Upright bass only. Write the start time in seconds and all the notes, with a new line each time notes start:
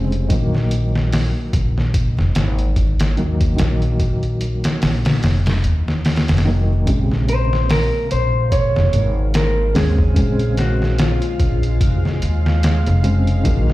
Already playing: F1
0.30 A#1
1.54 A#1
2.18 F1
2.36 G#1
3.18 D#2
3.59 A#1
4.82 A#1
5.24 F1
5.65 D#2
6.29 F1
6.88 A#1
8.12 A#1
8.76 F1
8.94 G#1
9.76 D#2
10.17 A#1
11.40 A#1
11.81 F1
12.23 D#2
12.87 F1
13.46 A#1